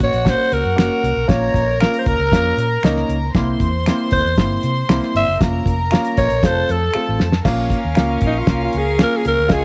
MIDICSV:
0, 0, Header, 1, 7, 480
1, 0, Start_track
1, 0, Key_signature, -5, "minor"
1, 0, Tempo, 513259
1, 1209, Time_signature, 4, 2, 24, 8
1, 9022, End_track
2, 0, Start_track
2, 0, Title_t, "Violin section"
2, 0, Program_c, 0, 48
2, 0, Note_on_c, 0, 66, 80
2, 0, Note_on_c, 0, 78, 83
2, 1165, Note_off_c, 0, 78, 0
2, 1169, Note_off_c, 0, 66, 0
2, 1197, Note_on_c, 0, 70, 80
2, 1201, Note_on_c, 0, 82, 89
2, 3086, Note_off_c, 0, 70, 0
2, 3088, Note_off_c, 0, 82, 0
2, 3141, Note_on_c, 0, 84, 89
2, 3143, Note_on_c, 0, 72, 75
2, 5018, Note_off_c, 0, 84, 0
2, 5019, Note_off_c, 0, 72, 0
2, 5058, Note_on_c, 0, 70, 74
2, 5058, Note_on_c, 0, 82, 83
2, 5995, Note_off_c, 0, 70, 0
2, 5995, Note_off_c, 0, 82, 0
2, 6012, Note_on_c, 0, 69, 78
2, 6013, Note_on_c, 0, 81, 79
2, 6952, Note_off_c, 0, 69, 0
2, 6953, Note_off_c, 0, 81, 0
2, 6977, Note_on_c, 0, 61, 77
2, 6978, Note_on_c, 0, 70, 75
2, 6979, Note_on_c, 0, 77, 88
2, 8856, Note_off_c, 0, 61, 0
2, 8857, Note_off_c, 0, 70, 0
2, 8858, Note_off_c, 0, 77, 0
2, 8877, Note_on_c, 0, 73, 79
2, 8882, Note_on_c, 0, 80, 92
2, 8884, Note_on_c, 0, 65, 73
2, 9022, Note_off_c, 0, 65, 0
2, 9022, Note_off_c, 0, 73, 0
2, 9022, Note_off_c, 0, 80, 0
2, 9022, End_track
3, 0, Start_track
3, 0, Title_t, "Alto saxophone"
3, 0, Program_c, 1, 65
3, 30, Note_on_c, 1, 73, 96
3, 274, Note_on_c, 1, 72, 105
3, 288, Note_off_c, 1, 73, 0
3, 494, Note_on_c, 1, 70, 90
3, 508, Note_off_c, 1, 72, 0
3, 731, Note_off_c, 1, 70, 0
3, 737, Note_on_c, 1, 70, 92
3, 1201, Note_on_c, 1, 73, 111
3, 1215, Note_off_c, 1, 70, 0
3, 1685, Note_off_c, 1, 73, 0
3, 1690, Note_on_c, 1, 70, 80
3, 1852, Note_off_c, 1, 70, 0
3, 1858, Note_on_c, 1, 72, 57
3, 1940, Note_on_c, 1, 70, 94
3, 1954, Note_off_c, 1, 72, 0
3, 2895, Note_off_c, 1, 70, 0
3, 3858, Note_on_c, 1, 72, 99
3, 4077, Note_off_c, 1, 72, 0
3, 4830, Note_on_c, 1, 76, 95
3, 5044, Note_off_c, 1, 76, 0
3, 5778, Note_on_c, 1, 73, 107
3, 6035, Note_on_c, 1, 72, 94
3, 6049, Note_off_c, 1, 73, 0
3, 6281, Note_on_c, 1, 69, 85
3, 6295, Note_off_c, 1, 72, 0
3, 6746, Note_off_c, 1, 69, 0
3, 7729, Note_on_c, 1, 63, 85
3, 7848, Note_on_c, 1, 65, 82
3, 7862, Note_off_c, 1, 63, 0
3, 8069, Note_off_c, 1, 65, 0
3, 8083, Note_on_c, 1, 65, 80
3, 8208, Note_on_c, 1, 68, 89
3, 8222, Note_off_c, 1, 65, 0
3, 8429, Note_off_c, 1, 68, 0
3, 8447, Note_on_c, 1, 70, 94
3, 8574, Note_on_c, 1, 68, 89
3, 8588, Note_off_c, 1, 70, 0
3, 8670, Note_off_c, 1, 68, 0
3, 8675, Note_on_c, 1, 70, 98
3, 8912, Note_on_c, 1, 68, 100
3, 8926, Note_off_c, 1, 70, 0
3, 9022, Note_off_c, 1, 68, 0
3, 9022, End_track
4, 0, Start_track
4, 0, Title_t, "Upright piano"
4, 0, Program_c, 2, 0
4, 230, Note_on_c, 2, 58, 66
4, 232, Note_on_c, 2, 66, 74
4, 235, Note_on_c, 2, 61, 58
4, 524, Note_off_c, 2, 58, 0
4, 525, Note_off_c, 2, 66, 0
4, 527, Note_off_c, 2, 61, 0
4, 709, Note_on_c, 2, 61, 70
4, 711, Note_on_c, 2, 58, 71
4, 711, Note_on_c, 2, 66, 78
4, 1004, Note_off_c, 2, 61, 0
4, 1005, Note_off_c, 2, 58, 0
4, 1005, Note_off_c, 2, 66, 0
4, 1194, Note_on_c, 2, 58, 73
4, 1194, Note_on_c, 2, 61, 65
4, 1200, Note_on_c, 2, 65, 80
4, 1487, Note_off_c, 2, 58, 0
4, 1487, Note_off_c, 2, 61, 0
4, 1489, Note_off_c, 2, 65, 0
4, 1691, Note_on_c, 2, 58, 72
4, 1691, Note_on_c, 2, 61, 64
4, 1693, Note_on_c, 2, 65, 80
4, 1975, Note_off_c, 2, 58, 0
4, 1975, Note_off_c, 2, 61, 0
4, 1976, Note_off_c, 2, 65, 0
4, 2168, Note_on_c, 2, 61, 64
4, 2175, Note_on_c, 2, 58, 66
4, 2175, Note_on_c, 2, 65, 73
4, 2453, Note_off_c, 2, 61, 0
4, 2457, Note_off_c, 2, 58, 0
4, 2457, Note_off_c, 2, 65, 0
4, 2656, Note_on_c, 2, 63, 104
4, 2658, Note_on_c, 2, 61, 85
4, 2660, Note_on_c, 2, 58, 88
4, 2938, Note_off_c, 2, 63, 0
4, 2939, Note_off_c, 2, 61, 0
4, 2940, Note_off_c, 2, 58, 0
4, 3136, Note_on_c, 2, 60, 73
4, 3139, Note_on_c, 2, 58, 86
4, 3140, Note_on_c, 2, 64, 97
4, 3418, Note_off_c, 2, 60, 0
4, 3419, Note_off_c, 2, 58, 0
4, 3420, Note_off_c, 2, 64, 0
4, 3618, Note_on_c, 2, 64, 88
4, 3619, Note_on_c, 2, 60, 76
4, 3624, Note_on_c, 2, 58, 81
4, 3899, Note_off_c, 2, 60, 0
4, 3899, Note_off_c, 2, 64, 0
4, 3902, Note_off_c, 2, 58, 0
4, 4095, Note_on_c, 2, 58, 69
4, 4095, Note_on_c, 2, 60, 60
4, 4100, Note_on_c, 2, 64, 79
4, 4377, Note_off_c, 2, 58, 0
4, 4377, Note_off_c, 2, 60, 0
4, 4380, Note_off_c, 2, 64, 0
4, 4575, Note_on_c, 2, 64, 99
4, 4579, Note_on_c, 2, 58, 85
4, 4580, Note_on_c, 2, 60, 83
4, 4857, Note_off_c, 2, 64, 0
4, 4859, Note_off_c, 2, 58, 0
4, 4859, Note_off_c, 2, 60, 0
4, 5051, Note_on_c, 2, 65, 85
4, 5053, Note_on_c, 2, 58, 73
4, 5053, Note_on_c, 2, 61, 65
4, 5335, Note_off_c, 2, 65, 0
4, 5336, Note_off_c, 2, 58, 0
4, 5336, Note_off_c, 2, 61, 0
4, 5531, Note_on_c, 2, 61, 83
4, 5534, Note_on_c, 2, 65, 91
4, 5536, Note_on_c, 2, 58, 84
4, 5815, Note_off_c, 2, 61, 0
4, 5817, Note_off_c, 2, 65, 0
4, 5818, Note_off_c, 2, 58, 0
4, 6017, Note_on_c, 2, 57, 67
4, 6018, Note_on_c, 2, 65, 83
4, 6019, Note_on_c, 2, 60, 67
4, 6298, Note_off_c, 2, 57, 0
4, 6298, Note_off_c, 2, 65, 0
4, 6299, Note_off_c, 2, 60, 0
4, 6495, Note_on_c, 2, 60, 73
4, 6496, Note_on_c, 2, 65, 80
4, 6497, Note_on_c, 2, 57, 76
4, 6777, Note_off_c, 2, 60, 0
4, 6778, Note_off_c, 2, 57, 0
4, 6778, Note_off_c, 2, 65, 0
4, 6965, Note_on_c, 2, 61, 96
4, 6967, Note_on_c, 2, 65, 116
4, 6968, Note_on_c, 2, 58, 105
4, 7252, Note_off_c, 2, 61, 0
4, 7253, Note_off_c, 2, 65, 0
4, 7254, Note_off_c, 2, 58, 0
4, 7444, Note_on_c, 2, 65, 90
4, 7445, Note_on_c, 2, 61, 72
4, 7452, Note_on_c, 2, 58, 86
4, 7732, Note_off_c, 2, 61, 0
4, 7732, Note_off_c, 2, 65, 0
4, 7736, Note_off_c, 2, 58, 0
4, 7918, Note_on_c, 2, 61, 63
4, 7922, Note_on_c, 2, 65, 74
4, 7923, Note_on_c, 2, 58, 67
4, 8209, Note_off_c, 2, 61, 0
4, 8211, Note_off_c, 2, 58, 0
4, 8211, Note_off_c, 2, 65, 0
4, 8401, Note_on_c, 2, 58, 76
4, 8404, Note_on_c, 2, 61, 69
4, 8405, Note_on_c, 2, 65, 84
4, 8691, Note_off_c, 2, 58, 0
4, 8692, Note_off_c, 2, 61, 0
4, 8693, Note_off_c, 2, 65, 0
4, 8870, Note_on_c, 2, 65, 106
4, 8871, Note_on_c, 2, 56, 92
4, 8875, Note_on_c, 2, 61, 83
4, 9022, Note_off_c, 2, 56, 0
4, 9022, Note_off_c, 2, 61, 0
4, 9022, Note_off_c, 2, 65, 0
4, 9022, End_track
5, 0, Start_track
5, 0, Title_t, "Fingered electric bass"
5, 0, Program_c, 3, 33
5, 1, Note_on_c, 3, 33, 76
5, 93, Note_off_c, 3, 33, 0
5, 129, Note_on_c, 3, 34, 77
5, 306, Note_off_c, 3, 34, 0
5, 487, Note_on_c, 3, 37, 89
5, 577, Note_off_c, 3, 37, 0
5, 601, Note_on_c, 3, 42, 80
5, 693, Note_off_c, 3, 42, 0
5, 726, Note_on_c, 3, 30, 92
5, 816, Note_off_c, 3, 30, 0
5, 966, Note_on_c, 3, 36, 90
5, 1056, Note_off_c, 3, 36, 0
5, 1087, Note_on_c, 3, 35, 76
5, 1177, Note_off_c, 3, 35, 0
5, 1207, Note_on_c, 3, 34, 93
5, 1385, Note_off_c, 3, 34, 0
5, 1443, Note_on_c, 3, 34, 82
5, 1712, Note_off_c, 3, 34, 0
5, 1931, Note_on_c, 3, 37, 85
5, 2019, Note_off_c, 3, 37, 0
5, 2046, Note_on_c, 3, 37, 80
5, 2136, Note_off_c, 3, 37, 0
5, 2171, Note_on_c, 3, 41, 92
5, 2348, Note_off_c, 3, 41, 0
5, 2405, Note_on_c, 3, 46, 91
5, 2584, Note_off_c, 3, 46, 0
5, 2652, Note_on_c, 3, 37, 87
5, 2829, Note_off_c, 3, 37, 0
5, 2888, Note_on_c, 3, 37, 91
5, 3066, Note_off_c, 3, 37, 0
5, 3130, Note_on_c, 3, 36, 98
5, 3307, Note_off_c, 3, 36, 0
5, 3364, Note_on_c, 3, 40, 84
5, 3632, Note_off_c, 3, 40, 0
5, 3856, Note_on_c, 3, 38, 84
5, 3943, Note_off_c, 3, 38, 0
5, 3977, Note_on_c, 3, 40, 81
5, 4063, Note_off_c, 3, 40, 0
5, 4091, Note_on_c, 3, 31, 94
5, 4268, Note_off_c, 3, 31, 0
5, 4334, Note_on_c, 3, 48, 92
5, 4510, Note_off_c, 3, 48, 0
5, 4572, Note_on_c, 3, 36, 92
5, 4660, Note_off_c, 3, 36, 0
5, 4812, Note_on_c, 3, 31, 91
5, 4900, Note_off_c, 3, 31, 0
5, 4938, Note_on_c, 3, 30, 75
5, 5024, Note_off_c, 3, 30, 0
5, 5059, Note_on_c, 3, 29, 97
5, 5233, Note_off_c, 3, 29, 0
5, 5291, Note_on_c, 3, 29, 92
5, 5557, Note_off_c, 3, 29, 0
5, 5777, Note_on_c, 3, 34, 91
5, 5863, Note_off_c, 3, 34, 0
5, 5904, Note_on_c, 3, 34, 80
5, 5987, Note_off_c, 3, 34, 0
5, 6016, Note_on_c, 3, 29, 103
5, 6191, Note_off_c, 3, 29, 0
5, 6260, Note_on_c, 3, 41, 86
5, 6434, Note_off_c, 3, 41, 0
5, 6628, Note_on_c, 3, 33, 79
5, 6710, Note_off_c, 3, 33, 0
5, 6735, Note_on_c, 3, 41, 89
5, 6911, Note_off_c, 3, 41, 0
5, 6967, Note_on_c, 3, 34, 97
5, 7234, Note_off_c, 3, 34, 0
5, 7338, Note_on_c, 3, 39, 76
5, 7424, Note_off_c, 3, 39, 0
5, 7453, Note_on_c, 3, 37, 89
5, 7629, Note_off_c, 3, 37, 0
5, 7687, Note_on_c, 3, 34, 78
5, 7866, Note_off_c, 3, 34, 0
5, 7922, Note_on_c, 3, 36, 82
5, 8103, Note_off_c, 3, 36, 0
5, 8175, Note_on_c, 3, 37, 84
5, 8439, Note_off_c, 3, 37, 0
5, 8654, Note_on_c, 3, 37, 87
5, 8741, Note_off_c, 3, 37, 0
5, 8777, Note_on_c, 3, 38, 77
5, 8863, Note_off_c, 3, 38, 0
5, 9022, End_track
6, 0, Start_track
6, 0, Title_t, "Muted fingered electric bass strokes"
6, 6505, Note_on_c, 9, 29, 50
6, 6598, Note_off_c, 9, 29, 0
6, 9022, End_track
7, 0, Start_track
7, 0, Title_t, "Drums"
7, 4, Note_on_c, 9, 36, 87
7, 97, Note_off_c, 9, 36, 0
7, 122, Note_on_c, 9, 42, 49
7, 216, Note_off_c, 9, 42, 0
7, 241, Note_on_c, 9, 36, 86
7, 248, Note_on_c, 9, 38, 109
7, 250, Note_on_c, 9, 42, 97
7, 335, Note_off_c, 9, 36, 0
7, 342, Note_off_c, 9, 38, 0
7, 343, Note_off_c, 9, 42, 0
7, 485, Note_on_c, 9, 42, 64
7, 578, Note_off_c, 9, 42, 0
7, 732, Note_on_c, 9, 26, 98
7, 734, Note_on_c, 9, 42, 78
7, 737, Note_on_c, 9, 38, 101
7, 825, Note_off_c, 9, 26, 0
7, 828, Note_off_c, 9, 42, 0
7, 830, Note_off_c, 9, 38, 0
7, 976, Note_on_c, 9, 42, 68
7, 1070, Note_off_c, 9, 42, 0
7, 1205, Note_on_c, 9, 36, 102
7, 1210, Note_on_c, 9, 42, 73
7, 1216, Note_on_c, 9, 38, 102
7, 1299, Note_off_c, 9, 36, 0
7, 1303, Note_off_c, 9, 42, 0
7, 1309, Note_off_c, 9, 38, 0
7, 1442, Note_on_c, 9, 36, 75
7, 1457, Note_on_c, 9, 42, 63
7, 1536, Note_off_c, 9, 36, 0
7, 1551, Note_off_c, 9, 42, 0
7, 1687, Note_on_c, 9, 26, 91
7, 1699, Note_on_c, 9, 42, 69
7, 1705, Note_on_c, 9, 38, 95
7, 1781, Note_off_c, 9, 26, 0
7, 1793, Note_off_c, 9, 42, 0
7, 1799, Note_off_c, 9, 38, 0
7, 1811, Note_on_c, 9, 42, 50
7, 1905, Note_off_c, 9, 42, 0
7, 1925, Note_on_c, 9, 42, 60
7, 1929, Note_on_c, 9, 36, 89
7, 2018, Note_off_c, 9, 42, 0
7, 2023, Note_off_c, 9, 36, 0
7, 2168, Note_on_c, 9, 36, 81
7, 2179, Note_on_c, 9, 38, 119
7, 2181, Note_on_c, 9, 42, 93
7, 2262, Note_off_c, 9, 36, 0
7, 2273, Note_off_c, 9, 38, 0
7, 2274, Note_off_c, 9, 42, 0
7, 2416, Note_on_c, 9, 42, 68
7, 2510, Note_off_c, 9, 42, 0
7, 2648, Note_on_c, 9, 26, 92
7, 2659, Note_on_c, 9, 42, 79
7, 2661, Note_on_c, 9, 38, 100
7, 2741, Note_off_c, 9, 26, 0
7, 2752, Note_off_c, 9, 42, 0
7, 2754, Note_off_c, 9, 38, 0
7, 2771, Note_on_c, 9, 38, 32
7, 2864, Note_off_c, 9, 38, 0
7, 2894, Note_on_c, 9, 42, 68
7, 2987, Note_off_c, 9, 42, 0
7, 3129, Note_on_c, 9, 42, 84
7, 3130, Note_on_c, 9, 36, 100
7, 3135, Note_on_c, 9, 38, 105
7, 3222, Note_off_c, 9, 42, 0
7, 3223, Note_off_c, 9, 36, 0
7, 3228, Note_off_c, 9, 38, 0
7, 3366, Note_on_c, 9, 36, 82
7, 3374, Note_on_c, 9, 42, 66
7, 3460, Note_off_c, 9, 36, 0
7, 3468, Note_off_c, 9, 42, 0
7, 3612, Note_on_c, 9, 26, 89
7, 3617, Note_on_c, 9, 42, 71
7, 3622, Note_on_c, 9, 38, 90
7, 3706, Note_off_c, 9, 26, 0
7, 3710, Note_off_c, 9, 42, 0
7, 3716, Note_off_c, 9, 38, 0
7, 3843, Note_on_c, 9, 42, 65
7, 3854, Note_on_c, 9, 36, 89
7, 3937, Note_off_c, 9, 42, 0
7, 3947, Note_off_c, 9, 36, 0
7, 4092, Note_on_c, 9, 36, 84
7, 4096, Note_on_c, 9, 38, 112
7, 4097, Note_on_c, 9, 42, 92
7, 4186, Note_off_c, 9, 36, 0
7, 4190, Note_off_c, 9, 38, 0
7, 4191, Note_off_c, 9, 42, 0
7, 4330, Note_on_c, 9, 42, 70
7, 4424, Note_off_c, 9, 42, 0
7, 4575, Note_on_c, 9, 26, 98
7, 4578, Note_on_c, 9, 42, 84
7, 4580, Note_on_c, 9, 38, 110
7, 4668, Note_off_c, 9, 26, 0
7, 4671, Note_off_c, 9, 42, 0
7, 4673, Note_off_c, 9, 38, 0
7, 4699, Note_on_c, 9, 38, 32
7, 4793, Note_off_c, 9, 38, 0
7, 4823, Note_on_c, 9, 42, 73
7, 4916, Note_off_c, 9, 42, 0
7, 5056, Note_on_c, 9, 36, 103
7, 5058, Note_on_c, 9, 42, 81
7, 5064, Note_on_c, 9, 38, 98
7, 5150, Note_off_c, 9, 36, 0
7, 5152, Note_off_c, 9, 42, 0
7, 5158, Note_off_c, 9, 38, 0
7, 5290, Note_on_c, 9, 36, 79
7, 5302, Note_on_c, 9, 42, 64
7, 5384, Note_off_c, 9, 36, 0
7, 5396, Note_off_c, 9, 42, 0
7, 5525, Note_on_c, 9, 26, 92
7, 5545, Note_on_c, 9, 42, 71
7, 5550, Note_on_c, 9, 38, 95
7, 5619, Note_off_c, 9, 26, 0
7, 5638, Note_off_c, 9, 42, 0
7, 5644, Note_off_c, 9, 38, 0
7, 5655, Note_on_c, 9, 42, 54
7, 5748, Note_off_c, 9, 42, 0
7, 5771, Note_on_c, 9, 42, 65
7, 5776, Note_on_c, 9, 36, 89
7, 5865, Note_off_c, 9, 42, 0
7, 5870, Note_off_c, 9, 36, 0
7, 5891, Note_on_c, 9, 42, 49
7, 5985, Note_off_c, 9, 42, 0
7, 6012, Note_on_c, 9, 36, 86
7, 6018, Note_on_c, 9, 38, 112
7, 6019, Note_on_c, 9, 42, 94
7, 6106, Note_off_c, 9, 36, 0
7, 6111, Note_off_c, 9, 38, 0
7, 6113, Note_off_c, 9, 42, 0
7, 6257, Note_on_c, 9, 42, 66
7, 6351, Note_off_c, 9, 42, 0
7, 6486, Note_on_c, 9, 26, 100
7, 6580, Note_off_c, 9, 26, 0
7, 6732, Note_on_c, 9, 38, 86
7, 6825, Note_off_c, 9, 38, 0
7, 6849, Note_on_c, 9, 38, 88
7, 6943, Note_off_c, 9, 38, 0
7, 6967, Note_on_c, 9, 36, 110
7, 6969, Note_on_c, 9, 49, 92
7, 6974, Note_on_c, 9, 38, 95
7, 7060, Note_off_c, 9, 36, 0
7, 7062, Note_off_c, 9, 49, 0
7, 7068, Note_off_c, 9, 38, 0
7, 7202, Note_on_c, 9, 36, 78
7, 7212, Note_on_c, 9, 42, 61
7, 7295, Note_off_c, 9, 36, 0
7, 7306, Note_off_c, 9, 42, 0
7, 7437, Note_on_c, 9, 26, 90
7, 7450, Note_on_c, 9, 42, 71
7, 7456, Note_on_c, 9, 38, 98
7, 7531, Note_off_c, 9, 26, 0
7, 7544, Note_off_c, 9, 42, 0
7, 7549, Note_off_c, 9, 38, 0
7, 7675, Note_on_c, 9, 42, 62
7, 7685, Note_on_c, 9, 36, 87
7, 7769, Note_off_c, 9, 42, 0
7, 7779, Note_off_c, 9, 36, 0
7, 7922, Note_on_c, 9, 36, 82
7, 7923, Note_on_c, 9, 38, 119
7, 7924, Note_on_c, 9, 42, 94
7, 8015, Note_off_c, 9, 36, 0
7, 8017, Note_off_c, 9, 38, 0
7, 8018, Note_off_c, 9, 42, 0
7, 8161, Note_on_c, 9, 42, 66
7, 8255, Note_off_c, 9, 42, 0
7, 8406, Note_on_c, 9, 42, 76
7, 8408, Note_on_c, 9, 26, 94
7, 8408, Note_on_c, 9, 38, 104
7, 8499, Note_off_c, 9, 42, 0
7, 8502, Note_off_c, 9, 26, 0
7, 8502, Note_off_c, 9, 38, 0
7, 8649, Note_on_c, 9, 42, 73
7, 8742, Note_off_c, 9, 42, 0
7, 8877, Note_on_c, 9, 42, 78
7, 8882, Note_on_c, 9, 38, 101
7, 8883, Note_on_c, 9, 36, 108
7, 8970, Note_off_c, 9, 42, 0
7, 8976, Note_off_c, 9, 36, 0
7, 8976, Note_off_c, 9, 38, 0
7, 9022, End_track
0, 0, End_of_file